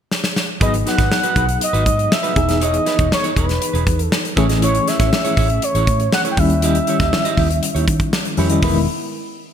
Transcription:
0.11 snare
0.24 snare
0.36 snare
0.60 fingered electric bass G#1, tine electric piano F#3 B3 D#4 G#4, clean electric guitar D#4 F#4 B4, analog synth lead D#5, kick, closed hi-hat
0.74 closed hi-hat
0.86 clean electric guitar D#4 F#4 B4, analog synth lead F#5, snare, closed hi-hat
0.97 fingered electric bass G#1, clean electric guitar D#4 F#4 B4, kick, snare, closed hi-hat
1.12 snare
1.23 clean electric guitar D#4 F#4 B4, closed hi-hat
1.36 fingered electric bass B1, clean electric guitar D#4 F#4 B4, kick, closed hi-hat
1.48 muted clean electric guitar stroke, closed hi-hat
1.61 analog synth lead D#5, muted clean electric guitar stroke, closed hi-hat
1.73 fingered electric bass G#1, clean electric guitar D#4 F#4 B4, closed hi-hat
1.86 fingered electric bass G#2, muted clean electric guitar stroke, kick, closed hi-hat
1.98 muted clean electric guitar stroke, closed hi-hat
2.10 analog synth lead E5, muted clean electric guitar stroke, snare
2.23 clean electric guitar D#4 F#4 B4, closed hi-hat
2.36 fingered electric bass E1, tine electric piano E3 B3 D#4 G#4, kick, closed hi-hat
2.48 muted clean electric guitar stroke, snare, closed hi-hat
2.61 clean electric guitar D#4 G#4 C#5, analog synth lead D#5, closed hi-hat
2.74 closed hi-hat
2.86 clean electric guitar D#4 G#4 B4, snare, closed hi-hat
2.99 fingered electric bass E1, clean electric guitar D#4 G#4 C#5, kick, closed hi-hat
3.11 analog synth lead C#5, muted clean electric guitar stroke, snare
3.23 clean electric guitar D#4 G#4 C#5, closed hi-hat
3.36 fingered electric bass E1, clean electric guitar D#4 G#4 C#5, analog synth lead B4, kick, closed hi-hat
3.48 muted clean electric guitar stroke, snare, closed hi-hat
3.61 muted clean electric guitar stroke, closed hi-hat
3.73 fingered electric bass E1, clean electric guitar D#4 G#4 B4, closed hi-hat
3.86 fingered electric bass E2, muted clean electric guitar stroke, kick, closed hi-hat
3.99 muted clean electric guitar stroke, closed hi-hat
4.05 analog synth lead A4
4.12 muted clean electric guitar stroke, snare
4.24 muted clean electric guitar stroke, closed hi-hat
4.36 fingered electric bass A1, tine electric piano E3 A3 C#4 G#4, clean electric guitar E4 G#4 C#5, kick, closed hi-hat
4.49 clean electric guitar E4 G#4 D#5, snare, closed hi-hat
4.62 clean electric guitar E4 G#4 C#5, analog synth lead C#5, closed hi-hat
4.75 closed hi-hat
4.87 clean electric guitar E4 G#4 C#5, analog synth lead E5, snare, closed hi-hat
4.99 fingered electric bass A1, clean electric guitar E4 G#4 C#5, kick, snare, closed hi-hat
5.13 snare
5.24 clean electric guitar E4 G#4 C#5, closed hi-hat
5.37 fingered electric bass A1, clean electric guitar E4 G#4 C#5, kick, open hi-hat
5.50 muted clean electric guitar stroke, closed hi-hat
5.62 analog synth lead C#5, muted clean electric guitar stroke, closed hi-hat
5.75 fingered electric bass A1, clean electric guitar E4 G#4 C#5, closed hi-hat
5.87 fingered electric bass A2, muted clean electric guitar stroke, kick, closed hi-hat
6.00 muted clean electric guitar stroke, closed hi-hat
6.12 analog synth lead F#5, muted clean electric guitar stroke, snare
6.25 clean electric guitar E4 G#4 C#5, closed hi-hat
6.31 analog synth lead G5
6.36 fingered electric bass D#2, tine electric piano D#3 G3 C#4 E4, analog synth lead E5, muted clean electric guitar stroke, kick, open hi-hat
6.50 muted clean electric guitar stroke, closed hi-hat
6.62 clean electric guitar E4 G4 D#5, closed hi-hat
6.75 closed hi-hat
6.87 clean electric guitar E4 G4 C#5, closed hi-hat
7.00 fingered electric bass D#2, clean electric guitar E4 G4 D#5, kick, snare, closed hi-hat
7.13 muted clean electric guitar stroke, snare
7.25 clean electric guitar E4 G4 D#5, closed hi-hat
7.37 fingered electric bass D#2, clean electric guitar E4 G4 D#5, kick, open hi-hat
7.50 muted clean electric guitar stroke, closed hi-hat
7.63 muted clean electric guitar stroke, closed hi-hat
7.75 fingered electric bass D#2, clean electric guitar E4 G4 C#5, closed hi-hat
7.87 fingered electric bass D#3, muted clean electric guitar stroke, kick, closed hi-hat
8.00 muted clean electric guitar stroke, kick, closed hi-hat
8.13 muted clean electric guitar stroke, snare
8.25 muted clean electric guitar stroke, closed hi-hat
8.37 fingered electric bass F2, tine electric piano D#3 G3 C#4 E4, clean electric guitar E4 G4 C#5, open hi-hat
8.50 clean electric guitar E4 G4 D#5, closed hi-hat
8.62 fingered electric bass E1, tine electric piano D#3 G#3 B3 E4, clean electric guitar D#4 G#4 B4, kick, open hi-hat

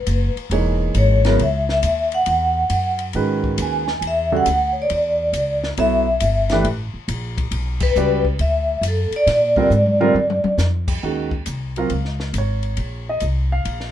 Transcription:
Already playing: vibraphone B4
0.07 upright bass F#1, hi-hat pedal, ride
0.36 muted upright bass stroke, ride
0.50 upright bass E1, grand piano E3 A#3 D#4 G#4 C#5, ride
0.95 upright bass G#1, vibraphone C#5, hi-hat pedal, ride
1.25 grand piano C#3 F#3 B3 E4 A#4, snare, ride
1.38 upright bass C#2, ride
1.43 vibraphone E5
1.69 vibraphone E5, snare
1.83 upright bass D#2, hi-hat pedal, ride
2.12 vibraphone F#5, ride
2.26 upright bass E2, ride
2.70 upright bass F#2, hi-hat pedal, ride
2.99 ride
3.13 upright bass G#2, grand piano D#3 G#3 C#4 F#4 B4, ride
3.44 kick
3.58 upright bass D#2, hi-hat pedal, ride
3.62 vibraphone G#5
3.88 snare
4.01 upright bass E2, ride
4.07 vibraphone E5
4.32 grand piano D3 G3 C#4 F#4 A4
4.37 vibraphone F#5
4.46 upright bass D2, hi-hat pedal, ride
4.72 vibraphone C#5
4.82 vibraphone D5
4.90 upright bass E2, ride
4.96 vibraphone D5
5.33 upright bass C#2, hi-hat pedal, ride
5.64 snare
5.77 upright bass B1, grand piano F#3 B3 E4 A4 C#5, vibraphone E5, ride
6.20 upright bass G1, hi-hat pedal, ride
6.49 grand piano E3 A3 D4 G4 B4, snare, ride
6.64 upright bass A1, ride
6.94 muted upright bass stroke
7.08 upright bass A#1, hi-hat pedal, ride
7.38 kick, ride
7.51 upright bass B1, ride
7.80 vibraphone B4, kick, crash
7.96 upright bass C#2, grand piano G3 C#4 F#4 B4 D5, hi-hat pedal
8.25 kick
8.39 upright bass D2, vibraphone E5, ride
8.81 upright bass F#2, hi-hat pedal, ride
8.88 vibraphone A4
9.11 muted upright bass stroke, ride
9.16 vibraphone D5
9.27 upright bass A#2, snare, ride
9.56 grand piano D3 G3 C4 F4 A#4, kick
9.70 upright bass G#2, hi-hat pedal
9.86 mid tom
10.00 grand piano D3 G3 C4 F4 A#4, mid tom
10.14 upright bass G2, mid tom
10.30 mid tom
10.44 muted upright bass stroke, mid tom
10.58 upright bass F2, snare, hi-hat pedal
10.88 kick, crash
11.03 upright bass D#2, grand piano D#3 G#3 C#4 F#4
11.31 kick
11.46 upright bass C2, hi-hat pedal, ride
11.76 grand piano F#3 C4 F4 A#4 F5, ride
11.90 upright bass C#2, ride
12.05 snare
12.20 snare
12.33 upright bass G#1, hi-hat pedal, ride
12.38 grand piano C#5
12.63 ride
12.77 upright bass A#1, ride
13.09 grand piano D#5
13.20 upright bass C2, hi-hat pedal, ride
13.52 grand piano F5
13.65 upright bass A#1, ride
13.80 snare

